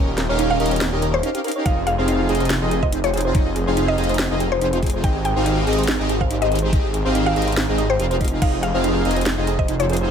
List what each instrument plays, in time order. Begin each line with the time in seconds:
Already playing: detuned saw bass D#1, supersaw synth C#4 D#4 G4 A#4 D#5
0.08 synth arpeggio sound G4
0.18 synth arpeggio sound A#4, snare, closed hi-hat
0.29 detuned saw bass D#1, supersaw synth C#4 D#4 G4 A#4 F5, synth arpeggio sound C#5
0.39 synth arpeggio sound D#4, closed hi-hat
0.50 synth arpeggio sound G4, synth pluck F5
0.60 detuned saw bass D#1, supersaw synth C#4 D#4 G4 A#4 D#5, synth arpeggio sound A#4, closed hi-hat
0.66 closed hi-hat
0.71 synth arpeggio sound C#5, closed hi-hat
0.76 closed hi-hat
0.81 synth arpeggio sound D#4, snare, closed hi-hat
0.92 detuned saw bass D#1, supersaw synth C#4 D#4 G4 A#4 D#5, synth arpeggio sound G4
1.02 synth arpeggio sound A#4, closed hi-hat
1.14 synth pluck C5, synth arpeggio sound C#5
1.23 supersaw synth C#4 D#4 G4 A#4 F5, synth arpeggio sound D#4, closed hi-hat
1.35 synth arpeggio sound G4, closed hi-hat
1.44 synth arpeggio sound A#4, closed hi-hat
1.48 closed hi-hat
1.51 closed hi-hat
1.56 synth arpeggio sound C#5
1.65 detuned saw bass F1, supersaw synth C4 D#4 F4 G#4 D#5, synth arpeggio sound D#4, synth pluck F5, kick, closed hi-hat
1.77 synth arpeggio sound F4
1.87 synth arpeggio sound G#4, synth pluck F5, closed hi-hat
1.98 detuned saw bass F1, supersaw synth C4 D#4 F4 G#4 F5, synth arpeggio sound C5
2.08 synth arpeggio sound D#4, closed hi-hat
2.19 synth arpeggio sound F4
2.29 detuned saw bass F1, supersaw synth C4 D#4 F4 G#4 D#5, synth arpeggio sound G#4, closed hi-hat
2.35 closed hi-hat
2.40 synth arpeggio sound C5, closed hi-hat
2.45 closed hi-hat
2.50 synth arpeggio sound D#4, snare, closed hi-hat
2.62 detuned saw bass F1, supersaw synth C4 D#4 F4 G#4 D#5, synth arpeggio sound F4
2.71 synth arpeggio sound G#4, closed hi-hat
2.83 synth arpeggio sound C5, synth pluck D#5, kick
2.92 detuned saw bass F1, supersaw synth C4 D#4 F4 G#4 C5, synth arpeggio sound D#4, closed hi-hat
3.04 synth arpeggio sound F4, synth pluck C#5, closed hi-hat
3.14 synth arpeggio sound G#4, closed hi-hat
3.17 closed hi-hat
3.21 closed hi-hat
3.25 synth arpeggio sound C5
3.35 detuned saw bass F1, supersaw synth C4 D#4 F4 G#4 D#5, synth arpeggio sound D#4, kick, closed hi-hat
3.46 synth arpeggio sound F4
3.56 synth arpeggio sound G#4, closed hi-hat
3.67 detuned saw bass F1, supersaw synth C4 D#4 F4 G#4 F5, synth arpeggio sound C5
3.77 synth arpeggio sound D#4, closed hi-hat
3.88 synth arpeggio sound F4, synth pluck D#5
3.98 detuned saw bass F1, supersaw synth C4 D#4 F4 G#4 D#5, synth arpeggio sound G#4, closed hi-hat
4.04 closed hi-hat
4.09 synth arpeggio sound C5, closed hi-hat
4.14 closed hi-hat
4.19 synth arpeggio sound D#4, snare, closed hi-hat
4.31 detuned saw bass F1, supersaw synth C4 D#4 F4 G#4 D#5, synth arpeggio sound F4
4.40 synth arpeggio sound G#4, closed hi-hat
4.52 synth pluck C5, synth arpeggio sound C5
4.61 detuned saw bass F1, supersaw synth C4 D#4 F4 G#4 C5, synth arpeggio sound D#4, closed hi-hat
4.73 synth arpeggio sound F4, closed hi-hat
4.83 synth arpeggio sound G#4, kick, closed hi-hat
4.86 closed hi-hat
4.90 closed hi-hat
4.94 synth arpeggio sound C5
5.04 detuned saw bass G#1, supersaw synth C4 D#4 G4 G#4 D#5, synth arpeggio sound D#4, synth pluck G5, kick, closed hi-hat
5.15 synth arpeggio sound G4
5.25 synth arpeggio sound G#4, synth pluck G5, closed hi-hat
5.36 detuned saw bass G#1, supersaw synth C4 D#4 G4 G#4 F5, synth arpeggio sound C5
5.46 synth arpeggio sound D#4, closed hi-hat
5.57 synth arpeggio sound G4
5.67 detuned saw bass G#1, supersaw synth C4 D#4 G4 G#4 D#5, synth arpeggio sound G#4, closed hi-hat
5.73 closed hi-hat
5.78 synth arpeggio sound C5, closed hi-hat
5.83 closed hi-hat
5.88 synth arpeggio sound D#4, snare, closed hi-hat
6.00 detuned saw bass G#1, supersaw synth C4 D#4 G4 G#4 D#5, synth arpeggio sound G4
6.09 synth arpeggio sound G#4, closed hi-hat
6.21 synth arpeggio sound C5, synth pluck F5, kick
6.30 detuned saw bass G#1, supersaw synth C4 D#4 G4 G#4 C5, synth arpeggio sound D#4, closed hi-hat
6.42 synth arpeggio sound G4, synth pluck D#5, closed hi-hat
6.51 synth arpeggio sound G#4, closed hi-hat
6.55 closed hi-hat
6.59 closed hi-hat
6.63 synth arpeggio sound C5
6.73 detuned saw bass G#1, supersaw synth C4 D#4 G4 G#4 D#5, synth arpeggio sound D#4, kick, closed hi-hat
6.84 synth arpeggio sound G4
6.94 synth arpeggio sound G#4, closed hi-hat
7.05 detuned saw bass G#1, supersaw synth C4 D#4 G4 G#4 F5, synth arpeggio sound C5
7.15 synth arpeggio sound D#4, closed hi-hat
7.26 synth arpeggio sound G4, synth pluck F5
7.36 detuned saw bass G#1, supersaw synth C4 D#4 G4 G#4 D#5, synth arpeggio sound G#4, closed hi-hat
7.42 closed hi-hat
7.47 synth arpeggio sound C5, closed hi-hat
7.52 closed hi-hat
7.57 synth arpeggio sound D#4, snare, closed hi-hat
7.69 detuned saw bass G#1, supersaw synth C4 D#4 G4 G#4 D#5, synth arpeggio sound G4
7.78 synth arpeggio sound D#5, closed hi-hat
7.90 synth pluck C5, synth arpeggio sound G5
7.99 detuned saw bass F1, supersaw synth C4 D#4 F4 G#4 F5, synth arpeggio sound G4, closed hi-hat
8.11 synth arpeggio sound C5, closed hi-hat
8.21 synth arpeggio sound D#4, kick, closed hi-hat
8.25 closed hi-hat
8.28 closed hi-hat
8.32 synth arpeggio sound D#4
8.42 detuned saw bass F1, supersaw synth C4 D#4 F4 G#4 D#5, synth arpeggio sound D#4, synth pluck F5, kick, closed hi-hat, crash
8.53 synth arpeggio sound F4
8.63 synth arpeggio sound G#4, synth pluck F5, closed hi-hat
8.74 detuned saw bass F1, supersaw synth C4 D#4 F4 G#4 F5, synth arpeggio sound C5
8.84 synth arpeggio sound D#4, closed hi-hat
8.95 synth arpeggio sound F4
9.05 detuned saw bass F1, supersaw synth C4 D#4 F4 G#4 D#5, synth arpeggio sound G#4, closed hi-hat
9.11 closed hi-hat
9.16 synth arpeggio sound C5, closed hi-hat
9.21 closed hi-hat
9.26 synth arpeggio sound D#4, snare, closed hi-hat
9.38 detuned saw bass F1, supersaw synth C4 D#4 F4 G#4 D#5, synth arpeggio sound F4
9.47 synth arpeggio sound G#4, closed hi-hat
9.59 synth arpeggio sound C5, synth pluck D#5, kick
9.68 detuned saw bass F1, supersaw synth C4 D#4 F4 G#4 C5, synth arpeggio sound D#4, closed hi-hat
9.80 synth arpeggio sound F4, synth pluck C#5, closed hi-hat
9.90 synth arpeggio sound G#4, closed hi-hat
9.93 closed hi-hat
9.97 closed hi-hat
10.01 synth arpeggio sound C5